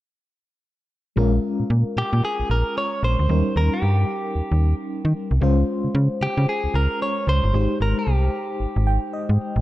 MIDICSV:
0, 0, Header, 1, 4, 480
1, 0, Start_track
1, 0, Tempo, 530973
1, 1053, Time_signature, 4, 2, 24, 8
1, 8690, End_track
2, 0, Start_track
2, 0, Title_t, "Clean electric guitar"
2, 0, Program_c, 0, 27
2, 1792, Note_on_c, 0, 67, 82
2, 2006, Note_off_c, 0, 67, 0
2, 2031, Note_on_c, 0, 68, 91
2, 2266, Note_off_c, 0, 68, 0
2, 2270, Note_on_c, 0, 70, 90
2, 2507, Note_off_c, 0, 70, 0
2, 2511, Note_on_c, 0, 73, 101
2, 2726, Note_off_c, 0, 73, 0
2, 2752, Note_on_c, 0, 72, 111
2, 3226, Note_off_c, 0, 72, 0
2, 3229, Note_on_c, 0, 70, 91
2, 3373, Note_off_c, 0, 70, 0
2, 3377, Note_on_c, 0, 67, 71
2, 4292, Note_off_c, 0, 67, 0
2, 5628, Note_on_c, 0, 67, 90
2, 5863, Note_off_c, 0, 67, 0
2, 5867, Note_on_c, 0, 68, 90
2, 6106, Note_on_c, 0, 70, 91
2, 6107, Note_off_c, 0, 68, 0
2, 6345, Note_off_c, 0, 70, 0
2, 6348, Note_on_c, 0, 73, 95
2, 6587, Note_off_c, 0, 73, 0
2, 6590, Note_on_c, 0, 72, 105
2, 7029, Note_off_c, 0, 72, 0
2, 7069, Note_on_c, 0, 70, 86
2, 7199, Note_off_c, 0, 70, 0
2, 7221, Note_on_c, 0, 67, 77
2, 8134, Note_off_c, 0, 67, 0
2, 8690, End_track
3, 0, Start_track
3, 0, Title_t, "FM electric piano"
3, 0, Program_c, 1, 5
3, 1047, Note_on_c, 1, 56, 74
3, 1053, Note_on_c, 1, 61, 65
3, 1061, Note_on_c, 1, 65, 70
3, 1069, Note_on_c, 1, 70, 81
3, 1228, Control_c, 1, 64, 127
3, 2934, Note_off_c, 1, 56, 0
3, 2937, Note_off_c, 1, 61, 0
3, 2941, Note_off_c, 1, 65, 0
3, 2945, Note_off_c, 1, 70, 0
3, 2967, Note_on_c, 1, 55, 63
3, 2973, Note_on_c, 1, 61, 53
3, 2980, Note_on_c, 1, 63, 60
3, 2985, Control_c, 1, 64, 0
3, 2988, Note_on_c, 1, 70, 68
3, 3119, Control_c, 1, 64, 127
3, 4854, Note_off_c, 1, 55, 0
3, 4857, Note_off_c, 1, 61, 0
3, 4860, Note_off_c, 1, 63, 0
3, 4865, Note_off_c, 1, 70, 0
3, 4889, Note_on_c, 1, 56, 75
3, 4896, Note_on_c, 1, 61, 67
3, 4902, Note_on_c, 1, 65, 65
3, 4906, Control_c, 1, 64, 0
3, 4909, Note_on_c, 1, 72, 85
3, 5086, Control_c, 1, 64, 127
3, 6775, Note_off_c, 1, 56, 0
3, 6778, Note_off_c, 1, 61, 0
3, 6782, Note_off_c, 1, 65, 0
3, 6785, Note_off_c, 1, 72, 0
3, 6806, Note_on_c, 1, 56, 62
3, 6813, Note_on_c, 1, 63, 56
3, 6820, Note_on_c, 1, 67, 56
3, 6824, Control_c, 1, 64, 0
3, 6827, Note_on_c, 1, 72, 70
3, 6986, Control_c, 1, 64, 127
3, 8018, Note_on_c, 1, 79, 67
3, 8239, Note_off_c, 1, 79, 0
3, 8257, Note_on_c, 1, 75, 64
3, 8690, Note_off_c, 1, 56, 0
3, 8690, Note_off_c, 1, 63, 0
3, 8690, Note_off_c, 1, 67, 0
3, 8690, Note_off_c, 1, 72, 0
3, 8690, Note_off_c, 1, 75, 0
3, 8690, End_track
4, 0, Start_track
4, 0, Title_t, "FM bass"
4, 0, Program_c, 2, 39
4, 1058, Note_on_c, 2, 34, 105
4, 1260, Note_off_c, 2, 34, 0
4, 1445, Note_on_c, 2, 46, 49
4, 1481, Note_off_c, 2, 46, 0
4, 1537, Note_on_c, 2, 46, 96
4, 1660, Note_off_c, 2, 46, 0
4, 1777, Note_on_c, 2, 46, 46
4, 1835, Note_off_c, 2, 46, 0
4, 1924, Note_on_c, 2, 46, 93
4, 2001, Note_off_c, 2, 46, 0
4, 2166, Note_on_c, 2, 34, 48
4, 2202, Note_off_c, 2, 34, 0
4, 2258, Note_on_c, 2, 34, 85
4, 2381, Note_off_c, 2, 34, 0
4, 2738, Note_on_c, 2, 34, 93
4, 2861, Note_off_c, 2, 34, 0
4, 2886, Note_on_c, 2, 38, 88
4, 2962, Note_off_c, 2, 38, 0
4, 2976, Note_on_c, 2, 39, 104
4, 3100, Note_off_c, 2, 39, 0
4, 3217, Note_on_c, 2, 39, 94
4, 3340, Note_off_c, 2, 39, 0
4, 3456, Note_on_c, 2, 43, 89
4, 3659, Note_off_c, 2, 43, 0
4, 3936, Note_on_c, 2, 39, 48
4, 3994, Note_off_c, 2, 39, 0
4, 4082, Note_on_c, 2, 39, 86
4, 4285, Note_off_c, 2, 39, 0
4, 4563, Note_on_c, 2, 51, 86
4, 4641, Note_off_c, 2, 51, 0
4, 4801, Note_on_c, 2, 36, 87
4, 4879, Note_off_c, 2, 36, 0
4, 4895, Note_on_c, 2, 37, 108
4, 5098, Note_off_c, 2, 37, 0
4, 5283, Note_on_c, 2, 49, 46
4, 5319, Note_off_c, 2, 49, 0
4, 5375, Note_on_c, 2, 49, 105
4, 5499, Note_off_c, 2, 49, 0
4, 5616, Note_on_c, 2, 49, 46
4, 5674, Note_off_c, 2, 49, 0
4, 5762, Note_on_c, 2, 49, 93
4, 5840, Note_off_c, 2, 49, 0
4, 6002, Note_on_c, 2, 37, 49
4, 6039, Note_off_c, 2, 37, 0
4, 6094, Note_on_c, 2, 37, 90
4, 6219, Note_off_c, 2, 37, 0
4, 6575, Note_on_c, 2, 37, 90
4, 6699, Note_off_c, 2, 37, 0
4, 6723, Note_on_c, 2, 31, 88
4, 6801, Note_off_c, 2, 31, 0
4, 6815, Note_on_c, 2, 32, 104
4, 6939, Note_off_c, 2, 32, 0
4, 7055, Note_on_c, 2, 32, 94
4, 7179, Note_off_c, 2, 32, 0
4, 7296, Note_on_c, 2, 36, 87
4, 7498, Note_off_c, 2, 36, 0
4, 7776, Note_on_c, 2, 32, 54
4, 7834, Note_off_c, 2, 32, 0
4, 7922, Note_on_c, 2, 32, 91
4, 8125, Note_off_c, 2, 32, 0
4, 8401, Note_on_c, 2, 44, 90
4, 8480, Note_off_c, 2, 44, 0
4, 8642, Note_on_c, 2, 33, 96
4, 8690, Note_off_c, 2, 33, 0
4, 8690, End_track
0, 0, End_of_file